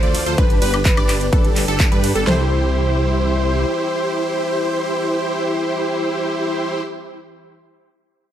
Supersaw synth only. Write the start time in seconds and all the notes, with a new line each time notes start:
0.03 F4 A4 D5
0.26 F4 A4 C5
0.38 D4
0.62 D4 G4 B4
0.97 D4 G4 D5
1.33 D4 G4 A4
1.68 D4 G4 A4
1.92 D4 G4 B4
2.15 D4 G4 A4
2.27 E4 G4 C5